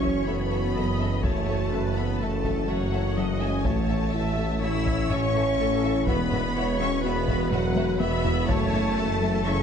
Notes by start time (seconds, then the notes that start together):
Already playing: F#1 F#2 E3 C#4 F#4 A4 C#5 C#6, impact
0.02 F#3 A4 E5, taiko
0.25 F#1 F#2 A3 B3 A4 E5 B5
0.51 A4 E5
0.74 F#1 F#2 F#3 A4 D#5 E5
0.99 C#4 A4 E5
1.22 F#1 F#2 F#3 A3 A4 C#5 E5 A5, taiko
1.48 A3 A4 E5
1.71 F#1 F#2 C#4 A4 B4 E5
1.95 F#3 B3 A4 E5 B5
2.19 F#1 F#2 A3 E4 A4 E5 A5
2.44 F#3 A4 E5, taiko
2.66 F#1 F#2 F#3 A3 A4 C#5 E5 F#5
2.92 A4 E5
3.16 F#1 F#2 F#3 A4 D#5 E5
3.40 G#3 C#4 A4 E5 G#5
3.64 A1 E3 A3 C#4 E4 A4 C#5 E5 A5, taiko
3.88 C#4 A4 E5, taiko low-mid
4.13 A1 E4 A4 E5
4.37 A3 A4 E5
4.62 A1 E4 A4 C#5 E5 E6
4.86 A3 A4 E5, taiko
5.10 A1 C#4 A4 E5 C#6, taiko low-mid
5.35 A4 E5, taiko low-mid
5.59 A1 A3 A4 E5
5.84 E4 A4 E5
6.06 E1 E3 B3 F#4 B4 E5 B5, taiko
6.31 B3 F#4 E5, taiko low-mid
6.55 E1 E4 F#4 C#5 E5
6.78 E3 C#4 F#4 E5 C#6
7.02 E1 B3 F#4 B4 E5 B5
7.28 F#4 E5, taiko
7.51 E1 F#3 B3 F#4 E5 F#5, taiko low-mid
7.76 F#4 E5, taiko high
7.99 E1 E3 B3 F#4 E5 B5, taiko high
8.25 E4 F#4 E5, taiko low
8.48 F#1 E3 F#3 A3 C#4 F#4 A4 C#5 E5 A5, taiko
8.73 A3 A4 E5, taiko low-mid
8.97 F#1 C#4 A4 E5
9.22 F#3 A4 E5
9.45 F#1 C#4 E4 A4 E5 C#6